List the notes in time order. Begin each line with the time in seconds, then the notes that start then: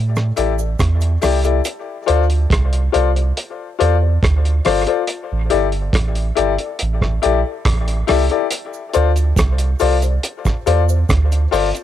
Already playing: A2
0.16 cross-stick, cabasa
0.36 A1 E4 G4 A4 D5, closed hi-hat, cabasa
0.59 A4 D5, cabasa
0.79 E2, kick, cross-stick, closed hi-hat, cabasa
1.01 closed hi-hat, cabasa
1.22 C2 E4 G4 A4 D5, cross-stick, open hi-hat, cabasa
1.44 E4 G4 A4 D5, closed hi-hat, cabasa
1.65 closed hi-hat, cabasa
2.06 D2 F4 A4 C5 D5, closed hi-hat
2.30 closed hi-hat
2.50 C2, kick, cross-stick, closed hi-hat
2.73 closed hi-hat
2.92 C2 F4 A4 C5 D5, closed hi-hat
3.16 closed hi-hat
3.37 closed hi-hat
3.79 E2 F4 A4 C5 D5, closed hi-hat
4.02 C5 D5
4.23 D2, kick, cross-stick, closed hi-hat
4.45 closed hi-hat
4.65 G1 F4 A4 C5 D5, cross-stick, open hi-hat
4.87 F4 A4 C5 D5, closed hi-hat
5.07 closed hi-hat
5.32 A1
5.50 G1 E4 G4 A4 D5, closed hi-hat
5.72 closed hi-hat
5.93 A1, kick, cross-stick, closed hi-hat
6.15 closed hi-hat
6.35 G1 E4 G4 A4 D5, closed hi-hat
6.58 A4 D5, closed hi-hat
6.79 A1, closed hi-hat
7.02 kick, cross-stick
7.22 A#1 E4 G4 A4 D5, closed hi-hat
7.65 A1, kick, cross-stick, closed hi-hat
7.88 closed hi-hat
8.07 C2 E4 G4 A4 D5, cross-stick, open hi-hat
8.30 E4 G4 A4 D5, closed hi-hat
8.51 closed hi-hat, cabasa
8.73 cabasa
8.93 D2 F4 A4 C5 D5, closed hi-hat, cabasa
9.16 closed hi-hat, cabasa
9.36 C2, kick, cross-stick, closed hi-hat, cabasa
9.58 closed hi-hat, cabasa
9.79 C2 F4 A4 C5 D5, open hi-hat, cabasa
10.02 C5 D5, closed hi-hat, cabasa
10.23 closed hi-hat, cabasa
10.45 kick, cross-stick, cabasa
10.66 E2 F4 A4 C5 D5, closed hi-hat, cabasa
10.89 C5 D5, cabasa
11.09 D2, kick, cross-stick, closed hi-hat, cabasa
11.32 closed hi-hat, cabasa
11.51 G1 F4 A4 C5 D5, open hi-hat, cabasa
11.75 closed hi-hat, cabasa